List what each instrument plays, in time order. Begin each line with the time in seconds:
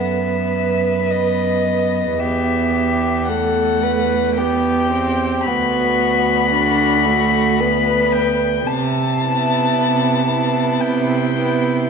Already playing: cello F#2, viola B3
0.00 violin B4 E5
1.10 viola B3, violin D#5
2.19 cello E2, violin G4 E5
2.73 violin G4
3.28 viola A3, violin A4 F#5
3.83 violin B4
4.36 viola B3, violin G4 G5
4.91 viola C4
5.44 cello D2, viola B3, violin F#4 B5
6.52 viola D4, violin F#4
7.05 viola A3
7.60 viola B3, violin B4
8.15 violin G5
8.67 cello C3, violin A5
9.22 viola B3, violin E4
9.75 cello C3
10.27 viola B3, violin E4
10.80 cello C3, violin G5
11.36 viola B3, violin E4